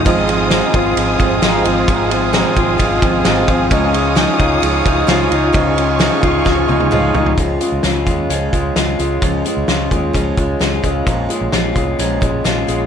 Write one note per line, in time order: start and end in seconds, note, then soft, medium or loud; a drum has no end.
0.00 0.96 F3 medium
0.00 0.29 G#3 medium
0.00 0.51 D#4 medium
0.00 0.74 F4 medium
0.00 3.68 F4 medium
0.00 3.68 D#6 medium
0.05 0.60 G#1 loud
0.05 0.28 G#2 medium
0.05 0.29 D#3 medium
0.05 0.29 F3 medium
0.05 0.29 G#3 medium
0.05 0.27 C4 medium
0.05 3.67 F4 medium
0.05 0.26 F4 loud
0.05 3.67 G#4 medium
0.05 3.67 C5 medium
0.05 3.68 C5 medium
0.05 3.68 D#5 medium
0.05 7.33 G#5 medium
0.05 kick loud
0.05 crash medium
0.28 0.50 F3 medium
0.28 0.51 G#3 medium
0.28 0.51 C4 medium
0.28 0.51 F4 medium
0.28 ride medium
0.51 0.74 G#2 medium
0.51 0.74 D#3 medium
0.51 0.74 F3 medium
0.51 0.74 G#3 medium
0.51 0.73 C4 loud
0.51 0.72 F4 medium
0.51 snare loud
0.51 ride medium
0.73 0.93 G#1 loud
0.73 0.95 F3 medium
0.73 0.96 G#3 medium
0.73 0.97 C4 medium
0.73 0.96 F4 medium
0.73 kick loud
0.73 ride medium
0.97 1.15 G#1 loud
0.97 1.20 F3 medium
0.97 1.20 G#3 medium
0.97 1.19 C4 medium
0.97 1.18 F4 medium
0.97 ride medium
1.19 1.39 G#1 medium
1.19 1.41 F3 medium
1.19 1.42 G#3 medium
1.19 1.42 C4 medium
1.19 1.42 F4 medium
1.19 kick loud
1.19 ride medium
1.42 1.61 G#1 loud
1.42 1.65 G#2 medium
1.42 1.65 D#3 medium
1.42 1.66 F3 medium
1.42 1.66 G#3 medium
1.42 1.65 C4 loud
1.42 1.63 F4 loud
1.42 snare loud
1.42 ride medium
1.65 1.84 G#1 loud
1.65 1.88 F3 medium
1.65 1.88 G#3 medium
1.65 1.89 C4 medium
1.65 1.88 F4 medium
1.65 ride medium
1.88 2.11 G#2 medium
1.88 2.11 D#3 medium
1.88 2.11 F3 medium
1.88 2.11 G#3 loud
1.88 2.11 C4 medium
1.88 2.09 F4 loud
1.88 kick loud
1.88 ride medium
2.11 2.33 F3 medium
2.11 2.33 G#3 medium
2.11 2.33 C4 medium
2.11 2.34 F4 medium
2.11 ride medium
2.33 2.56 G#2 medium
2.33 2.57 D#3 medium
2.33 2.57 F3 medium
2.33 2.56 G#3 medium
2.33 2.55 C4 medium
2.33 2.54 F4 loud
2.33 snare loud
2.33 ride medium
2.55 2.75 G#1 medium
2.55 2.77 F3 medium
2.55 2.78 G#3 medium
2.55 2.79 C4 medium
2.55 2.79 F4 medium
2.55 kick loud
2.55 ride medium
2.78 2.98 G#1 loud
2.78 3.02 F3 medium
2.78 3.02 G#3 medium
2.78 3.01 C4 medium
2.78 3.00 F4 medium
2.78 kick medium
2.78 ride medium
3.01 3.21 G#1 loud
3.01 3.24 F3 soft
3.01 3.24 G#3 medium
3.01 3.25 C4 medium
3.01 3.25 F4 medium
3.01 kick loud
3.01 ride medium
3.24 3.44 G#1 loud
3.24 3.48 G#2 medium
3.24 3.48 D#3 loud
3.24 3.48 F3 medium
3.24 3.48 G#3 medium
3.24 3.47 C4 loud
3.24 3.46 F4 loud
3.24 snare loud
3.24 ride medium
3.47 3.67 G#1 loud
3.47 3.70 F3 medium
3.47 3.71 G#3 medium
3.47 3.71 C4 medium
3.47 3.71 F4 medium
3.47 kick loud
3.47 ride medium
3.70 4.25 C#2 loud
3.70 3.94 C#3 medium
3.70 3.94 F3 medium
3.70 3.94 G#3 loud
3.70 3.93 D#4 loud
3.70 7.33 F4 medium
3.70 7.34 F4 medium
3.70 3.91 F4 loud
3.70 7.33 G#4 medium
3.70 7.34 C#5 medium
3.70 7.34 D#5 medium
3.70 5.52 D#6 medium
3.70 kick loud
3.70 ride medium
3.93 4.15 G#3 soft
3.93 4.16 D#4 medium
3.93 4.16 F4 medium
3.93 ride medium
4.15 4.39 C#3 medium
4.15 4.39 F3 medium
4.15 4.40 G#3 medium
4.15 4.38 D#4 medium
4.15 4.37 F4 loud
4.15 snare loud
4.15 ride medium
4.38 4.59 C#2 loud
4.38 4.61 G#3 medium
4.38 4.62 D#4 medium
4.38 4.62 F4 medium
4.38 kick loud
4.38 ride medium
4.61 4.81 C#2 loud
4.61 4.84 F3 medium
4.61 4.85 G#3 medium
4.61 4.85 D#4 medium
4.61 4.83 F4 medium
4.61 ride medium
4.84 5.04 C#2 loud
4.84 5.07 G#3 medium
4.84 5.07 D#4 medium
4.84 5.08 F4 medium
4.84 kick loud
4.84 ride medium
5.07 5.27 C#2 loud
5.07 5.31 C#3 loud
5.07 5.31 F3 medium
5.07 5.31 G#3 medium
5.07 5.30 D#4 loud
5.07 5.28 F4 loud
5.07 snare loud
5.07 ride medium
5.29 5.50 C#2 loud
5.29 5.52 G#3 soft
5.29 5.53 D#4 medium
5.29 5.53 F4 medium
5.29 ride medium
5.53 6.09 C#2 loud
5.53 5.76 C#3 medium
5.53 5.77 F3 loud
5.53 5.77 G#3 medium
5.53 5.76 D#4 medium
5.53 5.74 F4 loud
5.53 7.36 C#6 medium
5.53 kick loud
5.53 ride medium
5.75 5.99 G#3 medium
5.75 5.99 D#4 medium
5.75 5.99 F4 medium
5.75 ride medium
5.99 6.22 C#3 medium
5.99 6.23 F3 loud
5.99 6.23 G#3 medium
5.99 6.22 D#4 medium
5.99 6.20 F4 medium
5.99 snare loud
5.99 ride medium
6.21 6.42 C#2 loud
6.21 6.44 G#3 medium
6.21 6.46 D#4 medium
6.21 6.45 F4 medium
6.21 kick loud
6.21 ride medium
6.45 6.65 C#2 loud
6.45 6.68 F3 medium
6.45 6.69 G#3 medium
6.45 6.68 D#4 medium
6.45 6.67 F4 medium
6.45 kick medium
6.45 snare medium
6.68 6.88 C#2 loud
6.68 6.91 G#3 medium
6.68 6.91 D#4 medium
6.68 6.91 F4 medium
6.68 high tom medium
6.80 high tom medium
6.91 7.11 C#2 loud
6.91 7.14 C#3 medium
6.91 7.15 F3 medium
6.91 7.15 G#3 loud
6.91 7.15 D#4 medium
6.91 7.13 F4 loud
6.91 mid tom medium
7.14 7.34 C#2 loud
7.14 7.38 G#3 medium
7.14 7.38 D#4 medium
7.14 7.37 F4 medium
7.14 floor tom loud
7.26 floor tom medium
7.37 7.56 C#2 medium
7.37 7.61 C#3 medium
7.37 7.61 F3 medium
7.37 7.61 G#3 medium
7.37 7.61 C#4 medium
7.37 7.59 F4 medium
7.37 kick loud
7.37 closed hi-hat medium
7.60 7.83 G#3 soft
7.60 7.84 C#4 soft
7.60 7.84 F4 medium
7.60 closed hi-hat medium
7.72 7.82 C#2 medium
7.83 8.03 C#2 medium
7.83 8.06 F3 medium
7.83 8.07 G#3 medium
7.83 8.07 C#4 medium
7.83 8.05 F4 medium
7.83 snare medium
7.83 closed hi-hat medium
8.06 8.25 D#2 medium
8.06 8.30 G#3 soft
8.06 8.30 C#4 soft
8.06 8.29 F4 medium
8.06 kick medium
8.06 closed hi-hat medium
8.29 8.48 C#2 medium
8.29 8.53 C#3 medium
8.29 8.53 F3 medium
8.29 8.54 G#3 medium
8.29 8.53 C#4 medium
8.29 8.51 F4 medium
8.29 closed hi-hat medium
8.53 8.72 C#2 medium
8.53 8.76 G#3 soft
8.53 8.77 C#4 soft
8.53 8.76 F4 medium
8.53 kick medium
8.53 closed hi-hat medium
8.76 8.95 C#2 medium
8.76 8.99 F3 medium
8.76 8.99 G#3 medium
8.76 8.99 C#4 medium
8.76 8.98 F4 medium
8.76 snare medium
8.76 closed hi-hat medium
8.99 9.18 C#2 medium
8.99 9.22 G#3 soft
8.99 9.23 C#4 soft
8.99 9.22 F4 soft
8.99 closed hi-hat medium
9.22 9.41 C#2 medium
9.22 9.45 C#3 medium
9.22 9.46 F3 medium
9.22 9.46 G#3 medium
9.22 9.45 C#4 medium
9.22 9.43 F4 medium
9.22 kick loud
9.22 closed hi-hat medium
9.45 9.68 G#3 soft
9.45 9.69 C#4 soft
9.45 9.68 F4 medium
9.45 closed hi-hat medium
9.57 9.66 C#2 medium
9.68 9.87 C#2 medium
9.68 9.91 F3 medium
9.68 9.92 G#3 medium
9.68 9.91 C#4 medium
9.68 9.90 F4 medium
9.68 snare medium
9.68 closed hi-hat medium
9.91 10.10 D#2 medium
9.91 10.14 G#3 soft
9.91 10.14 C#4 soft
9.91 10.14 F4 soft
9.91 kick medium
9.91 closed hi-hat medium
10.13 10.33 C#2 medium
10.13 10.37 C#3 medium
10.13 10.37 F3 medium
10.13 10.38 G#3 medium
10.13 10.37 C#4 medium
10.13 10.36 F4 medium
10.13 kick medium
10.13 closed hi-hat medium
10.37 10.56 C#2 medium
10.37 10.59 G#3 soft
10.37 10.60 C#4 soft
10.37 10.60 F4 soft
10.37 kick medium
10.37 closed hi-hat medium
10.59 10.79 C#2 medium
10.59 10.83 F3 medium
10.59 10.84 G#3 medium
10.59 10.83 C#4 medium
10.59 10.82 F4 medium
10.59 snare medium
10.59 closed hi-hat medium
10.83 11.02 C#2 medium
10.83 11.06 G#3 soft
10.83 11.07 C#4 soft
10.83 11.06 F4 medium
10.83 kick medium
10.83 closed hi-hat medium
11.07 11.26 A#1 medium
11.07 11.30 A#2 medium
11.07 11.30 F3 medium
11.07 11.30 G#3 medium
11.07 11.29 C#4 medium
11.07 11.28 F4 medium
11.07 kick loud
11.07 closed hi-hat medium
11.29 11.52 G#3 soft
11.29 11.53 C#4 medium
11.29 11.52 F4 medium
11.29 closed hi-hat medium
11.41 11.51 A#1 medium
11.52 11.71 A#1 medium
11.52 11.76 F3 medium
11.52 11.76 G#3 medium
11.52 11.75 C#4 medium
11.52 11.73 F4 medium
11.52 snare medium
11.52 closed hi-hat medium
11.74 11.95 C2 medium
11.74 11.99 G#3 soft
11.74 11.99 C#4 soft
11.74 11.98 F4 soft
11.74 kick medium
11.74 closed hi-hat medium
11.99 12.18 A#1 loud
11.99 12.22 A#2 medium
11.99 12.22 F3 medium
11.99 12.22 G#3 medium
11.99 12.21 C#4 medium
11.99 12.20 F4 medium
11.99 closed hi-hat medium
12.21 12.41 A#1 medium
12.21 12.44 G#3 soft
12.21 12.45 C#4 soft
12.21 12.44 F4 medium
12.21 kick medium
12.21 closed hi-hat medium
12.44 12.64 A#1 medium
12.44 12.68 F3 medium
12.44 12.68 G#3 medium
12.44 12.68 C#4 medium
12.44 12.66 F4 medium
12.44 snare medium
12.44 closed hi-hat medium
12.67 12.86 A#1 medium
12.67 12.86 G#3 soft
12.67 12.86 C#4 soft
12.67 12.86 F4 medium
12.67 closed hi-hat medium